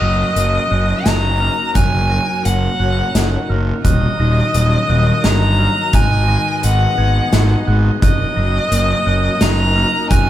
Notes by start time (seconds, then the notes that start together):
Already playing: F#2 C#4 F#4 A#4 D#5
0.01 F#1 F#3 A#6
0.36 F#1 A#3, closed hi-hat
0.71 F#1 C#4 F#6
1.06 F#1 D#4 A#5, snare, closed hi-hat
1.41 A#3 F6
1.74 F#1 F#2 C#5 G#5 F#6, kick, closed hi-hat
2.10 F#3 A#6
2.45 F#1 A#3 F#5, closed hi-hat
2.79 F#1 C#4 F#6
3.14 F#1 D#4, snare, closed hi-hat
3.49 F#1 A#3 F6
3.84 D#1 D#2 C#4 D#5 F#6, kick, closed hi-hat
4.19 D#1 D#3 A#6
4.54 D#1 F#3, closed hi-hat
4.88 D#1 A#3 F#6
5.24 G1 D#4 A#5, snare, closed hi-hat
5.58 F#3 F6
5.93 G#1 G#2 B3 G#4 G#5 F#6, kick, closed hi-hat
6.28 D#3 A#6
6.63 G#1 G#3 F#5, closed hi-hat
6.98 G#1 B3 G#6
7.33 G#1 D#4, snare, closed hi-hat
7.67 G#1 G#3 F#6
8.02 F#1 F#2 C#4 F#4 A#4 D#5 F#6, kick, closed hi-hat
8.36 F#1 F#3 A#6
8.71 F#1 A#3, closed hi-hat
9.06 F#1 C#4 F#6
9.41 F#1 D#4 A#5, snare, closed hi-hat
9.76 A#3 F6
10.10 F#1 F#2 G#5 F#6, kick, closed hi-hat